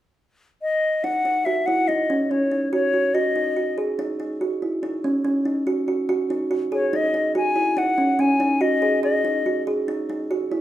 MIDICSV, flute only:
0, 0, Header, 1, 2, 480
1, 0, Start_track
1, 0, Tempo, 420463
1, 1193, Time_signature, 7, 2, 24, 8
1, 12111, End_track
2, 0, Start_track
2, 0, Title_t, "Flute"
2, 0, Program_c, 0, 73
2, 708, Note_on_c, 0, 75, 59
2, 1186, Note_on_c, 0, 78, 59
2, 1203, Note_off_c, 0, 75, 0
2, 1658, Note_on_c, 0, 76, 59
2, 1675, Note_off_c, 0, 78, 0
2, 1897, Note_on_c, 0, 78, 58
2, 1914, Note_off_c, 0, 76, 0
2, 2144, Note_on_c, 0, 75, 57
2, 2161, Note_off_c, 0, 78, 0
2, 2632, Note_on_c, 0, 73, 49
2, 2649, Note_off_c, 0, 75, 0
2, 3103, Note_off_c, 0, 73, 0
2, 3109, Note_on_c, 0, 73, 60
2, 3586, Note_on_c, 0, 75, 54
2, 3603, Note_off_c, 0, 73, 0
2, 4310, Note_off_c, 0, 75, 0
2, 7694, Note_on_c, 0, 73, 55
2, 7942, Note_on_c, 0, 75, 65
2, 7959, Note_off_c, 0, 73, 0
2, 8399, Note_off_c, 0, 75, 0
2, 8405, Note_on_c, 0, 80, 71
2, 8884, Note_on_c, 0, 78, 69
2, 8901, Note_off_c, 0, 80, 0
2, 9365, Note_on_c, 0, 80, 63
2, 9382, Note_off_c, 0, 78, 0
2, 9832, Note_on_c, 0, 75, 61
2, 9849, Note_off_c, 0, 80, 0
2, 10306, Note_off_c, 0, 75, 0
2, 10313, Note_on_c, 0, 75, 60
2, 10989, Note_off_c, 0, 75, 0
2, 12111, End_track
0, 0, End_of_file